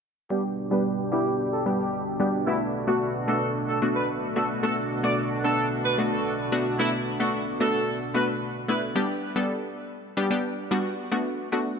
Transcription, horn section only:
0.31 G4
0.71 B4
1.12 G4
1.52 A4
1.79 G4
2.47 E4
2.87 F#4
3.28 A4
3.68 A4
3.96 B4
4.36 A4
4.63 A4
5.03 D5
5.44 A4
5.84 B4
6.12 A4
6.79 E4
7.20 F#4
7.60 A4
8.15 B4
8.68 B4

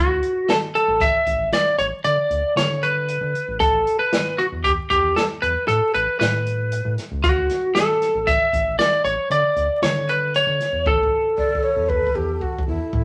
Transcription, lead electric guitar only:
Already playing: F#4
0.50 A4
0.75 A4
1.01 E5
1.53 D5
1.79 C#5
2.04 D5
2.57 C#5
2.83 B4
3.60 A4
3.99 B4
4.38 F#4
4.64 G4
4.90 G4
5.16 A4
5.42 B4
5.68 A4
5.94 B4
6.20 B4
7.24 F#4
7.75 A4
8.27 E5
8.79 D5
9.05 C#5
9.32 D5
9.83 C#5
10.09 B4
10.36 C#5
10.87 A4

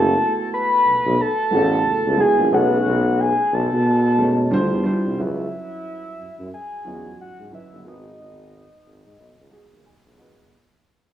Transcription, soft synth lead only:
Already playing: A5
0.54 B5
1.21 A5
2.20 G#5
2.54 F#5
3.20 G#5
3.54 A5
5.20 E5
6.54 G#5
7.21 F#5
7.54 E5
7.88 D#5

